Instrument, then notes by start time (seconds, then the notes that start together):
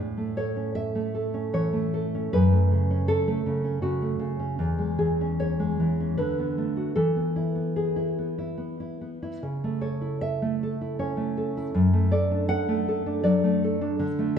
nylon-string guitar
Already playing: A2
0.17 A3
0.37 A4 C#5
0.56 C#4
0.75 E5
0.95 A3
1.15 A4
1.34 C#4
1.53 E3 C#5
1.73 A3
1.94 A4
2.15 C#4
2.33 F#2 B4
2.53 A3
2.71 C#3
2.90 C#4
3.08 A4
3.28 A3
3.46 C#3
3.64 C#4
3.82 C#3 F#4
4.02 A3
4.19 C#3
4.40 C#4
4.59 E2
4.79 G#3
4.99 E3 G#4
5.21 C#4
5.40 C#5
5.59 G#3
5.80 E3
6.00 C#4
6.18 D3 B4
6.39 B3
6.58 A3
6.77 F#4
6.96 E3 A4
7.16 B3
7.36 E4
7.55 B3
7.76 G#4
7.96 E4
8.19 B3
8.38 E4
8.58 B3
8.80 E4
9.01 B3
9.23 E4
9.43 C#3
9.64 A3
9.81 A4 C#5
10.01 E4
10.21 E5
10.42 A3
10.63 A4
10.81 E4
10.99 C#4 C#5
11.17 A3
11.37 A4
11.57 E4
11.74 F#2
11.93 A3
12.12 A4 D5
12.31 D4
12.49 F#5
12.68 A3
12.88 A4
13.06 D4
13.24 F#3 D5
13.44 A3
13.64 A4
13.81 D4
13.99 D3
14.19 A3